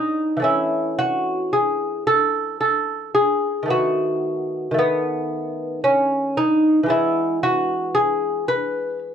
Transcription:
0.00 0.35 E3 soft
0.00 0.38 G#3 soft
0.00 0.42 D#4 medium
0.37 3.62 E3 soft
0.37 3.64 A3 soft
0.42 3.66 C#4 soft
0.42 0.97 E4 medium
0.99 1.51 F#4 medium
1.53 2.05 G#4 medium
2.07 2.59 A4 medium
2.61 3.13 A4 medium
3.15 3.68 G#4 medium
3.63 4.70 D#3 soft
3.63 4.73 A3 soft
3.68 4.74 B3 soft
3.68 4.75 F#4 medium
4.71 6.83 D#3 soft
4.71 6.84 A3 soft
4.79 5.81 B3 medium
5.84 6.35 C#4 medium
6.37 6.88 D#4 medium
6.83 9.15 E3 soft
6.83 9.15 G#3 soft
6.88 9.15 B3 soft
6.88 7.41 E4 medium
7.43 7.94 F#4 medium
7.95 8.46 G#4 medium
8.48 8.99 B4 medium

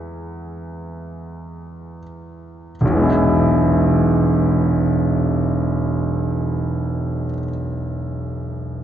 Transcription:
0.00 2.71 E2 medium
0.00 2.75 G#3 soft
0.00 2.75 B3 soft
0.00 2.76 E4 soft
0.00 1.97 G#4 soft
0.00 2.01 E5 medium
2.81 7.24 E1 medium
2.85 7.28 B1 soft
2.90 7.34 E3 soft
2.95 7.38 G#3 soft
3.00 7.43 B3 soft
3.04 7.48 E4 soft

